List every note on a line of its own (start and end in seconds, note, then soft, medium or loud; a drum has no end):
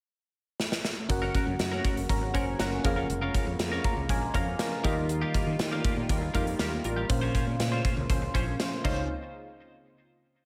0.60 snare medium
0.72 snare medium
0.85 snare medium
1.09 1.28 F#1 loud
1.09 4.81 C#3 medium
1.09 2.83 F#3 medium
1.09 8.81 A#3 medium
1.09 2.81 C#4 medium
1.09 2.81 F#4 medium
1.09 2.83 F#4 medium
1.09 2.08 A#4 medium
1.09 2.08 F#5 medium
1.09 muted clean electric guitar stroke soft
1.09 kick loud
1.09 closed hi-hat medium
1.22 1.33 C#4 medium
1.22 1.34 F#4 medium
1.22 1.35 A#4 medium
1.34 1.51 C#4 medium
1.34 1.47 F#4 medium
1.34 1.46 A#4 medium
1.34 kick medium
1.34 closed hi-hat medium
1.47 1.56 F#2 medium
1.47 muted clean electric guitar stroke soft
1.59 1.78 F#2 loud
1.59 muted clean electric guitar stroke soft
1.59 snare loud
1.59 closed hi-hat medium
1.72 1.83 C#4 medium
1.72 1.84 F#4 medium
1.72 1.85 A#4 medium
1.84 2.01 C#4 medium
1.84 1.97 F#4 medium
1.84 1.95 A#4 medium
1.84 kick loud
1.84 closed hi-hat medium
1.97 2.06 F#1 medium
1.97 muted clean electric guitar stroke soft
1.97 closed hi-hat medium
2.09 2.34 G#1 medium
2.09 2.20 F#3 medium
2.09 2.20 C#4 medium
2.09 2.20 A#4 medium
2.09 2.34 C#5 medium
2.09 2.33 A#5 medium
2.09 kick loud
2.09 closed hi-hat medium
2.22 muted clean electric guitar stroke soft
2.34 2.53 F#1 medium
2.34 2.45 F#3 medium
2.34 2.54 C#4 medium
2.34 2.45 C#4 medium
2.34 2.47 F#4 medium
2.34 2.45 A#4 loud
2.34 2.59 C5 medium
2.34 2.58 G#5 medium
2.34 kick medium
2.34 closed hi-hat medium
2.47 muted clean electric guitar stroke soft
2.59 2.78 F#1 medium
2.59 2.70 F#3 medium
2.59 2.79 C#4 medium
2.59 2.70 C#4 medium
2.59 2.72 F#4 medium
2.59 2.70 A#4 medium
2.59 2.84 A#4 medium
2.59 2.71 A#4 medium
2.59 3.07 F#5 medium
2.59 snare loud
2.59 closed hi-hat medium
2.72 muted clean electric guitar stroke soft
2.84 3.03 F1 medium
2.84 3.06 F3 medium
2.84 4.83 G#3 medium
2.84 4.80 C#4 medium
2.84 3.06 C#4 loud
2.84 8.80 F4 medium
2.84 4.80 G#4 medium
2.84 3.06 A#4 loud
2.84 4.81 A#4 medium
2.84 4.34 F5 medium
2.84 muted clean electric guitar stroke soft
2.84 kick loud
2.84 closed hi-hat medium
2.96 3.08 C#4 medium
2.96 3.09 F4 medium
2.96 3.09 A#4 medium
3.09 3.28 F1 loud
3.09 muted clean electric guitar stroke soft
3.09 closed hi-hat medium
3.22 3.33 C#4 medium
3.22 3.34 F4 medium
3.22 3.35 A#4 medium
3.34 3.51 C#4 medium
3.34 3.47 F4 medium
3.34 3.46 A#4 medium
3.34 kick medium
3.34 closed hi-hat medium
3.47 3.56 F2 medium
3.47 muted clean electric guitar stroke soft
3.59 3.78 F2 loud
3.59 muted clean electric guitar stroke soft
3.59 snare loud
3.59 closed hi-hat medium
3.72 3.83 C#4 medium
3.72 3.84 F4 medium
3.72 3.85 A#4 medium
3.84 4.01 C#4 medium
3.84 3.97 F4 medium
3.84 3.95 A#4 medium
3.84 4.08 A#5 medium
3.84 kick loud
3.84 closed hi-hat medium
3.97 4.09 C#2 medium
3.97 muted clean electric guitar stroke soft
4.09 4.28 A#1 medium
4.09 4.20 F3 medium
4.09 4.20 C#4 medium
4.09 4.20 A#4 medium
4.09 4.33 G#5 medium
4.09 kick loud
4.09 closed hi-hat medium
4.22 muted clean electric guitar stroke soft
4.34 4.53 F2 medium
4.34 4.45 F3 loud
4.34 4.54 C#4 medium
4.34 4.45 C#4 medium
4.34 4.47 F4 medium
4.34 4.45 A#4 loud
4.34 4.45 A#4 medium
4.34 4.58 F5 medium
4.34 kick medium
4.34 closed hi-hat medium
4.47 muted clean electric guitar stroke soft
4.59 4.70 F3 medium
4.59 4.70 C#4 medium
4.59 4.70 A#4 loud
4.59 4.83 F5 medium
4.59 muted clean electric guitar stroke soft
4.59 snare loud
4.59 closed hi-hat medium
4.72 muted clean electric guitar stroke soft
4.83 5.22 D#2 loud
4.83 7.07 D#3 medium
4.83 5.56 D#3 medium
4.83 7.07 G3 medium
4.83 5.06 G3 medium
4.83 5.04 A#3 medium
4.83 6.31 D#4 medium
4.83 4.97 F4 medium
4.83 5.06 F4 medium
4.83 6.31 G4 medium
4.83 4.95 G4 medium
4.83 5.06 A#4 loud
4.83 6.32 A#4 medium
4.83 5.08 D#5 medium
4.83 6.32 F5 medium
4.83 kick loud
4.83 closed hi-hat medium
4.97 muted clean electric guitar stroke soft
5.09 muted clean electric guitar stroke soft
5.09 closed hi-hat medium
5.21 5.33 A#3 medium
5.21 5.33 F4 medium
5.21 5.34 G4 medium
5.34 5.51 A#3 medium
5.34 5.47 F4 medium
5.34 5.45 G4 medium
5.34 kick medium
5.34 closed hi-hat medium
5.47 5.56 D#3 loud
5.47 muted clean electric guitar stroke soft
5.59 5.78 D#3 medium
5.59 muted clean electric guitar stroke soft
5.59 snare medium
5.59 closed hi-hat medium
5.72 5.83 A#3 medium
5.72 5.84 F4 medium
5.72 5.85 G4 medium
5.84 6.01 A#3 medium
5.84 5.97 F4 medium
5.84 5.96 G4 medium
5.84 kick loud
5.84 closed hi-hat medium
5.97 6.06 A#2 medium
5.97 muted clean electric guitar stroke soft
6.09 6.28 D#2 medium
6.09 6.20 G3 medium
6.09 6.20 F4 medium
6.09 6.20 A#4 medium
6.09 kick loud
6.09 closed hi-hat medium
6.22 muted clean electric guitar stroke soft
6.34 6.53 F2 medium
6.34 6.45 G3 medium
6.34 6.54 A#3 medium
6.34 7.10 D#4 medium
6.34 6.45 F4 medium
6.34 6.47 F4 medium
6.34 7.10 G4 soft
6.34 6.46 G4 loud
6.34 6.45 A#4 loud
6.34 7.09 A#4 medium
6.34 7.10 F5 medium
6.34 kick medium
6.34 closed hi-hat medium
6.47 muted clean electric guitar stroke soft
6.47 closed hi-hat soft
6.59 6.78 D#2 medium
6.59 6.70 G3 medium
6.59 6.79 A#3 medium
6.59 6.72 F4 medium
6.59 6.70 F4 medium
6.59 6.71 G4 medium
6.59 6.70 A#4 loud
6.59 snare loud
6.59 closed hi-hat medium
6.72 muted clean electric guitar stroke soft
6.84 7.03 A1 medium
6.84 7.06 G3 medium
6.84 7.06 F4 loud
6.84 7.06 A#4 loud
6.84 muted clean electric guitar stroke soft
6.84 closed hi-hat medium
6.96 7.14 A#3 soft
6.96 7.09 F4 medium
6.96 7.10 G4 medium
7.09 7.28 A#1 loud
7.09 7.81 A#2 medium
7.09 8.83 C#3 medium
7.09 8.81 C#4 medium
7.09 8.81 A#4 medium
7.09 8.83 C5 medium
7.09 8.82 C5 medium
7.09 8.82 F5 medium
7.09 muted clean electric guitar stroke soft
7.09 kick loud
7.09 closed hi-hat medium
7.21 7.33 C#4 medium
7.21 7.34 F4 medium
7.21 7.34 C5 medium
7.34 7.51 C#4 medium
7.34 7.47 F4 medium
7.34 7.46 C5 medium
7.34 kick medium
7.34 closed hi-hat medium
7.47 7.56 A#2 medium
7.47 muted clean electric guitar stroke soft
7.59 7.78 A#2 loud
7.59 muted clean electric guitar stroke soft
7.59 snare medium
7.59 closed hi-hat medium
7.72 7.83 C#4 medium
7.72 7.84 F4 medium
7.72 7.85 C5 medium
7.84 8.01 C#4 medium
7.84 7.97 F4 medium
7.84 7.96 C5 medium
7.84 kick loud
7.84 closed hi-hat medium
7.97 8.06 C#2 loud
7.97 muted clean electric guitar stroke soft
8.10 8.28 C#2 medium
8.10 8.20 F3 medium
8.10 8.20 C#4 medium
8.10 8.20 C5 medium
8.10 kick loud
8.10 closed hi-hat medium
8.22 muted clean electric guitar stroke soft
8.34 8.53 A#1 medium
8.34 8.45 F3 medium
8.34 8.54 C#4 medium
8.34 8.45 C#4 medium
8.34 8.47 F4 medium
8.34 8.45 C5 loud
8.34 8.46 C5 medium
8.34 kick medium
8.34 closed hi-hat medium
8.47 muted clean electric guitar stroke soft
8.59 8.70 F3 medium
8.59 8.70 C#4 medium
8.59 8.70 C5 medium
8.59 muted clean electric guitar stroke soft
8.59 snare loud
8.59 closed hi-hat medium
8.72 muted clean electric guitar stroke soft
8.84 9.08 C#2 medium
8.84 9.08 C#3 medium
8.84 9.08 G#3 medium
8.84 9.08 C4 medium
8.84 8.99 D#4 medium
8.84 9.08 D#4 medium
8.84 9.08 F4 medium
8.84 9.00 F4 medium
8.84 9.08 F4 medium
8.84 9.08 C5 loud
8.84 9.08 C5 medium
8.84 9.00 C5 medium
8.84 9.08 C#5 medium
8.84 9.08 F5 medium
8.84 kick loud
8.84 crash medium